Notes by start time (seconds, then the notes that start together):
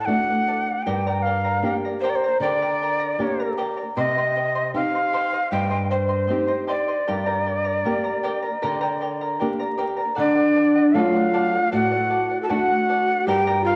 0.05 A3 D4 F#4 A4 D5 F#5
0.28 D5 F#5
0.47 A4 D5 F#5
0.67 D5 F#5
0.83 G4 G5
0.87 G2 A#4 D5 A#5
1.07 G4 A#4 D5 G5 A#5
1.22 A#4 D5 F5 G5
1.27 A#5
1.44 A#4 D5 A#5
1.62 A#3 D4 G4 A#4 D5 G5 A#5
1.85 A#4 D5 A#5
2.01 G4 A#4 C5 D5 G5 A#5
2.10 D5
2.16 C5
2.24 A#4 D5 A#5
2.40 D3 G4 A#4 D5 G5 A#5
2.62 G4 A#4 D5 G5 A#5
2.82 A#4 D5 G5 A#5
3.00 A#4 D5 A#5
3.19 A#3 D4 G4 A#4 D5 G5 A#5
3.40 A#4 D5 A#5
3.58 G4 A#4 D5 G5 A#5
3.77 A#4 D5 A#5
3.97 C3 G4 C5 D#5 G5 C6
4.18 G4 C5 D#5 G5 C6
4.36 C5 D#5 G5 C6
4.55 C5 D#5 C6
4.74 C4 D#4 G4 C5 D#5 F5 G5 C6
4.95 C5 D#5 C6
5.13 G4 C5 D#5 G5 C6
5.33 C5 D#5 C6
5.51 G2 G4 C5 D#5 G5 C6
5.70 G4 C5 D#5 G5 C6
5.90 C5 D#5 G5 C6
6.09 C5 D#5 C6
6.27 C4 D#4 G4 C5 D#5 G5 C6
6.47 C5 D#5 C6
6.67 G4 C5 D5 D#5 G5 C6
6.88 C5 D#5 C6
7.08 G2 G4 A#4 D5 G5 A#5
7.26 G4 A#4 D5 G5 A#5
7.46 A#4 D5 G5 A#5
7.64 A#4 D5 A#5
7.85 A#3 D4 G4 A#4 D5 G5 A#5
8.04 A#4 D5 A#5
8.23 G4 A#4 D5 G5 A#5
8.42 A#4 D5 A#5
8.62 D3 G4 A#4 D5 G5 A#5
8.81 G4 A#4 D5 G5 A#5
9.00 A#4 D5 G5 A#5
9.21 A#4 D5 A#5
9.39 A#3 D4 G4 A#4 D5 G5 A#5
9.59 A#4 D5 A#5
9.77 G4 A#4 D5 G5 A#5
9.97 A#4 D5 A#5
10.15 D3 D4 A4 D5 F#5
10.35 A4 D5 F#5
10.55 A4 D5 F#5
10.75 D5 F#5
10.94 F#3 A3 D4 F4 A4 D5 F5 F#5
11.13 D5 F#5
11.34 A4 D5 F#5
11.53 D5 F#5
11.72 A2 F#4 A4 D5 F#5
11.91 A4 D5 F#5
12.10 A4 D5 F#5
12.30 D5 F#5
12.42 A4 A5
12.48 A3 D4 F#4 A4 D5 F#5
12.69 D5 F#5
12.89 A4 D5 F#5
13.08 D5 F#5
13.25 G2 G4 A#4 D5 G5 A#5
13.47 G4 A#4 D5 G5 A#5
13.64 F4 A#4 D5 F5 G5 A#5